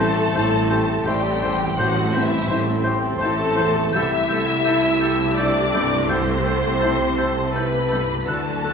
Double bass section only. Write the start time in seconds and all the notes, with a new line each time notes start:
Already playing: A1
0.35 A1
1.05 A1
1.77 A1
2.49 A1
3.20 A1
3.94 C2
8.28 D2